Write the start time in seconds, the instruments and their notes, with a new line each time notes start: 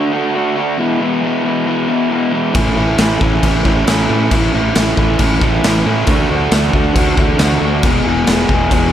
Already playing: overdriven electric guitar D3 A3 D4 F#4
0.12 overdriven electric guitar D3 A3 D4 F#4
0.34 overdriven electric guitar D3 A3 D4 F#4
0.55 overdriven electric guitar D3 A3 D4 F#4
0.78 overdriven electric guitar E2 B2 E3 G#3 B3 E4
0.99 overdriven electric guitar E2 B2 E3 G#3 B3 E4
1.22 overdriven electric guitar E2 B2 E3 G#3 B3 E4
1.43 overdriven electric guitar E2 B2 E3 G#3 B3 E4
1.65 overdriven electric guitar E2 B2 E3 G#3 B3 E4
1.87 overdriven electric guitar E2 B2 E3 G#3 B3 E4
2.09 overdriven electric guitar E2 B2 E3 G#3 B3 E4
2.31 overdriven electric guitar E2 B2 E3 G#3 B3 E4
2.52 fingered electric bass A1, overdriven electric guitar A2 E3 A3 C#4 E4, kick, crash
2.74 fingered electric bass A1, overdriven electric guitar A2 E3 A3 C#4 E4
2.97 fingered electric bass A1, overdriven electric guitar A2 E3 A3 C#4 E4, snare, crash
3.20 fingered electric bass A1, overdriven electric guitar A2 E3 A3 C#4 E4, kick
3.42 fingered electric bass A1, overdriven electric guitar A2 E3 A3 C#4 E4, kick, crash
3.64 fingered electric bass A1, overdriven electric guitar A2 E3 A3 C#4 E4, kick
3.85 fingered electric bass A1, overdriven electric guitar A2 E3 A3 C#4 E4, snare, crash
4.07 overdriven electric guitar A2 E3 A3 C#4 E4, fingered electric bass A2
4.31 fingered electric bass A1, overdriven electric guitar A2 E3 A3 C#4 E4, kick, crash
4.52 fingered electric bass A1, overdriven electric guitar A2 E3 A3 C#4 E4
4.74 fingered electric bass A1, overdriven electric guitar A2 E3 A3 C#4 E4, snare, crash
4.97 fingered electric bass A1, overdriven electric guitar A2 E3 A3 C#4 E4, kick
5.19 fingered electric bass A1, overdriven electric guitar A2 E3 A3 C#4 E4, kick, crash
5.41 fingered electric bass A1, overdriven electric guitar A2 E3 A3 C#4 E4, kick
5.64 fingered electric bass A1, overdriven electric guitar A2 E3 A3 C#4 E4, snare, crash
5.86 overdriven electric guitar A2 E3 A3 C#4 E4, fingered electric bass A2
6.07 fingered electric bass D2, overdriven electric guitar D3 A3 D4 F#4, kick, crash
6.29 fingered electric bass D2, overdriven electric guitar D3 A3 D4 F#4
6.51 fingered electric bass D2, overdriven electric guitar D3 A3 D4 F#4, snare, crash
6.73 fingered electric bass D2, overdriven electric guitar D3 A3 D4 F#4, kick
6.95 fingered electric bass D2, overdriven electric guitar D3 A3 D4 F#4, kick, crash
7.16 fingered electric bass D2, overdriven electric guitar D3 A3 D4 F#4, kick
7.39 fingered electric bass D2, overdriven electric guitar D3 A3 D4 F#4, snare, crash
7.61 fingered electric bass D2, overdriven electric guitar D3 A3 D4 F#4
7.83 fingered electric bass E1, overdriven electric guitar E2 B2 E3 G#3 B3 G#4, kick, crash
8.05 fingered electric bass E1, overdriven electric guitar E2 B2 E3 G#3 B3 G#4
8.26 fingered electric bass E1, overdriven electric guitar E2 B2 E3 G#3 B3 G#4, snare, crash
8.48 fingered electric bass E1, overdriven electric guitar E2 B2 E3 G#3 B3 G#4, kick
8.70 fingered electric bass E1, overdriven electric guitar E2 B2 E3 G#3 B3 G#4, kick, crash